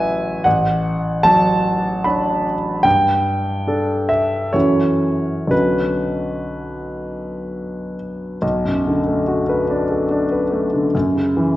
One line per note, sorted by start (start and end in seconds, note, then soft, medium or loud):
0.00 0.41 A1 soft
0.00 0.13 F#3 soft
0.00 0.41 E4 soft
0.00 0.41 B4 soft
0.00 0.48 C#5 medium
0.00 0.48 E5 medium
0.00 0.45 G#5 medium
0.44 2.81 A1 soft
0.44 1.24 F#5 medium
1.23 2.53 F#3 soft
1.23 2.04 A5 medium
2.04 2.81 D4 soft
2.04 2.81 C#5 soft
2.04 2.45 B5 medium
2.83 4.50 G2 soft
2.83 4.09 G5 medium
3.67 4.51 D4 soft
3.67 4.51 A4 soft
4.09 4.54 E5 medium
4.53 5.48 F#2 soft
4.53 5.47 E3 soft
4.53 5.47 C#4 soft
4.53 5.48 F#4 soft
4.53 5.48 A4 soft
4.53 5.51 C#5 medium
5.47 8.36 B1 soft
5.47 8.36 D3 soft
5.47 8.37 C#4 soft
5.47 8.37 F#4 soft
5.47 7.96 B4 medium
8.42 10.90 B1 soft
8.65 8.99 F#2 soft
8.87 9.20 D3 soft
9.07 9.41 A3 soft
9.28 9.62 F#4 soft
9.49 9.82 B4 soft
9.70 10.03 D4 soft
9.91 10.24 A4 soft
10.11 10.44 D4 soft
10.32 10.65 B4 soft
10.52 10.85 A3 soft
10.74 10.94 D3 soft
10.95 11.56 F#2 soft
11.15 11.49 C#3 soft
11.37 11.56 E3 soft